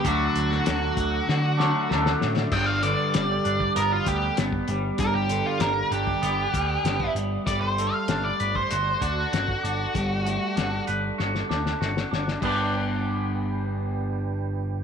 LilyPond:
<<
  \new Staff \with { instrumentName = "Tonewheel organ" } { \time 4/4 \key g \major \tempo 4 = 97 << { <fis'' d'''>1 | d''1~ | d''1~ | d''1~ |
d''1 | <d' b' g''>1 | } \\ { a'1 | g'1~ | g'1 | a'1~ |
a'1 | r1 | } >> }
  \new Staff \with { instrumentName = "Lead electric guitar" } { \time 4/4 \key g \major fis'2. r4 | g''16 f''16 d''4. bes'16 f'16 g'8 r4 | bes'16 g'8 f'16 bes'8 g'2 r8 | d''16 c''8 f''8 d''8 c''8. fis'4.~ |
fis'4. r2 r8 | r1 | }
  \new Staff \with { instrumentName = "Clean electric guitar" } { \time 4/4 \key g \major <d fis a d'>2~ <d fis a d'>8 <d fis a d'>8 <d fis a d'>4 | g,8 d8 g8 d'8 b8 g8 b8 g8 | g,8 d8 g8 d'8 b8 g8 b8 g8 | g8 a8 d'8 b'8 fis'8 d'8 fis'8 d'8 |
g8 a8 d'8 b'8 fis'8 d'8 fis'8 d'8 | <g b d' g' b'>1 | }
  \new Staff \with { instrumentName = "Picked electric bass" } { \clef bass \time 4/4 \key g \major d,8 d,8 d,8 d,8 d4 d,8 a,8 | g,,4 g,,8 g,,8 g,,8 d,8 g,,8 g,,8 | g,,4 g,,8 g,,8 g,,8 d,8 g,,8 g,,8 | g,,4 g,,8 g,,8 g,,8 d,8 g,,8 g,,8 |
g,,4 g,,8 g,,8 g,,8 d,8 g,,8 g,,8 | g,,1 | }
  \new DrumStaff \with { instrumentName = "Drums" } \drummode { \time 4/4 <hh bd>8 hh16 sn16 <hh sn>8 <hh bd>8 sn8 sn8 sn16 sn16 sn16 sn16 | <cymc bd>8 hh8 <hh sn>8 hh16 bd16 hh8 <hh bd>8 <hh sn>16 bd16 hh8 | <hh bd>8 hh8 <hh sn>8 hh16 bd16 hh8 <hh bd>8 <hh sn>16 bd16 hh8 | <hh bd>8 hh8 <hh sn>8 hh16 bd16 hh8 <hh bd>8 <hh sn>16 bd16 hh8 |
<hh bd>8 hh8 <hh sn>8 hh8 sn16 sn16 sn16 sn16 sn16 sn16 sn16 sn16 | <cymc bd>4 r4 r4 r4 | }
>>